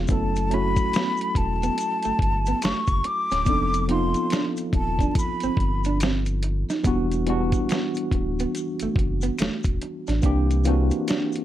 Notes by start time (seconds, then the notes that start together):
Already playing: F3 A3 B3 C#4 G#4
0.08 F#1 F#3 A3 B3 C#4 E4 A5, kick, closed hi-hat, maracas
0.12 A4
0.36 closed hi-hat, maracas
0.50 F#3 A3 C#4 E4 B5, closed hi-hat
0.54 F#4
0.76 kick, closed hi-hat, maracas
0.93 B3, finger snap, snare, closed hi-hat, maracas
1.17 closed hi-hat, maracas
1.35 E1 A5, muted clean electric guitar stroke, kick, closed hi-hat
1.63 B3, closed hi-hat, maracas
1.78 closed hi-hat, maracas
2.03 G1 A3, closed hi-hat, maracas
2.19 G1, muted clean electric guitar stroke, kick, closed hi-hat
2.46 B3, closed hi-hat, maracas
2.62 F#1 A3 C#6, finger snap, snare, closed hi-hat, maracas
2.87 F#1, kick, closed hi-hat, maracas
3.04 D6, muted clean electric guitar stroke, closed hi-hat
3.31 D1 C#4, snare, closed hi-hat, maracas
3.45 F1 F3 B3 C4 D4 D#4 A4, kick, closed hi-hat, maracas
3.73 closed hi-hat, maracas
3.88 F3 B3 C4 D#4 C6, closed hi-hat
3.92 F4
4.14 closed hi-hat, maracas
4.30 D4, finger snap, snare, closed hi-hat, maracas
4.57 closed hi-hat, maracas
4.73 D#1 A5, muted clean electric guitar stroke, kick, closed hi-hat
4.99 D4, kick, closed hi-hat, maracas
5.15 B5, kick, closed hi-hat, maracas
5.40 G1 C4, closed hi-hat, maracas
5.57 G1, muted clean electric guitar stroke, kick, closed hi-hat
5.84 D4, closed hi-hat, maracas
6.00 C4, finger snap, snare, closed hi-hat, maracas
6.26 closed hi-hat, maracas
6.43 muted clean electric guitar stroke, closed hi-hat
6.70 D#4, snare, closed hi-hat, maracas
6.83 E1 E3 G3 B3 D4 F#4, kick, closed hi-hat, maracas
7.12 closed hi-hat, maracas
7.26 E3 G3 B3 D4 F#4, closed hi-hat
7.52 kick, closed hi-hat, maracas
7.69 B3, finger snap, snare, closed hi-hat, maracas
7.94 closed hi-hat, maracas
8.11 D1, muted clean electric guitar stroke, kick, closed hi-hat
8.39 B3, closed hi-hat, maracas
8.55 closed hi-hat, maracas
8.79 F#1 A3, closed hi-hat, maracas
8.96 F#1, muted clean electric guitar stroke, kick, closed hi-hat
9.21 B3, closed hi-hat, maracas
9.39 E1 A3, finger snap, snare, closed hi-hat, maracas
9.63 E1, kick, closed hi-hat, maracas
9.82 muted clean electric guitar stroke, closed hi-hat
10.07 A1 D4, snare, closed hi-hat, maracas
10.22 C2 E3 A#3 C4 D4 G4, kick, closed hi-hat, maracas
10.51 closed hi-hat, maracas
10.64 E3 A#3 C4 D4, closed hi-hat, maracas
10.69 F#4
10.91 closed hi-hat, maracas
11.08 D4, finger snap, snare, closed hi-hat, maracas
11.32 closed hi-hat, maracas